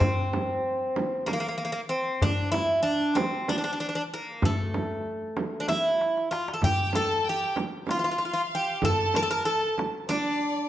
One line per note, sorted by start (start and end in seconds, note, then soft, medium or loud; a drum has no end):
0.00 1.26 C4 medium
0.00 darbuka dum loud
0.00 frame drum medium
0.33 darbuka tek medium
0.33 frame drum medium
0.96 darbuka tek medium
0.96 frame drum medium
1.26 1.32 A#3 medium
1.26 darbuka tek medium
1.26 frame drum medium
1.33 1.39 A#3 medium
1.40 1.47 A#3 medium
1.48 1.56 A#3 soft
1.58 1.64 A#3 medium
1.65 1.71 A#3 medium
1.72 1.80 A#3 medium
1.89 2.22 C4 medium
2.22 2.51 D4 medium
2.22 darbuka dum medium
2.22 frame drum medium
2.52 2.82 E4 medium
2.52 darbuka tek medium
2.52 frame drum medium
2.83 3.16 D4 medium
3.15 3.48 C4 medium
3.15 darbuka tek medium
3.15 frame drum medium
3.48 3.56 D4 medium
3.48 darbuka tek medium
3.48 frame drum medium
3.58 3.63 D4 medium
3.64 3.71 D4 medium
3.73 3.79 D4 medium
3.80 3.86 D4 medium
3.89 3.94 D4 medium
3.95 4.01 D4 medium
4.14 4.44 A#3 medium
4.42 5.66 A3 medium
4.42 frame drum medium
4.42 darbuka dum medium
4.74 darbuka tek medium
4.74 frame drum medium
5.06 darbuka ka soft
5.37 darbuka tek medium
5.37 frame drum medium
5.60 5.67 D4 medium
5.68 6.31 E4 medium
5.68 darbuka tek medium
5.68 frame drum medium
6.01 darbuka tek medium
6.17 darbuka ka medium
6.31 6.53 F4 medium
6.31 darbuka tek medium
6.48 darbuka ka medium
6.54 6.61 A4 medium
6.62 6.95 G4 medium
6.62 6.92 G5 medium
6.62 frame drum medium
6.62 darbuka dum medium
6.93 7.27 A4 medium
6.93 7.25 A5 medium
6.93 darbuka tek medium
6.93 frame drum medium
7.25 7.57 G5 medium
7.29 7.57 G4 medium
7.56 darbuka tek medium
7.56 frame drum medium
7.87 7.97 F4 medium
7.87 8.79 F5 medium
7.87 darbuka tek medium
7.87 frame drum medium
7.99 8.03 F4 medium
8.04 8.10 F4 medium
8.11 8.17 F4 soft
8.18 8.24 F4 medium
8.25 8.32 F4 soft
8.33 8.41 F4 medium
8.55 8.84 G4 medium
8.82 9.16 A4 medium
8.82 9.45 A5 loud
8.82 frame drum medium
8.82 darbuka dum medium
9.14 9.22 A#4 loud
9.14 darbuka tek medium
9.14 frame drum medium
9.22 9.29 A4 medium
9.31 9.45 A#4 medium
9.45 9.75 A4 medium
9.45 9.75 A5 medium
9.78 darbuka tek medium
9.78 frame drum medium
10.09 10.69 D4 medium
10.09 10.68 D5 medium
10.09 darbuka tek medium
10.09 frame drum medium